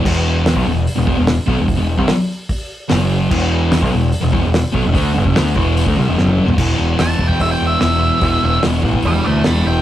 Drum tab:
CC |x---------------|----------------|x---------------|----------------|
HH |----o---o---o---|o---o---o---o---|----o---o---o---|o---o---o-------|
SD |----o-------o---|----o-------o---|----o-------o---|----o-------o---|
T1 |----------------|----------------|----------------|-------------o--|
T2 |----------------|----------------|----------------|--------------o-|
FT |----------------|----------------|----------------|---------------o|
BD |o----o----o---o-|o--o----o-------|o----o----o---o-|o--o--o--o------|

CC |x---------------|----------------|
HH |----o---o---o---|o---o---o---o---|
SD |----o-------o---|----o-------o---|
T1 |----------------|----------------|
T2 |----------------|----------------|
FT |----------------|----------------|
BD |o-----ooo-------|o-----ooo-------|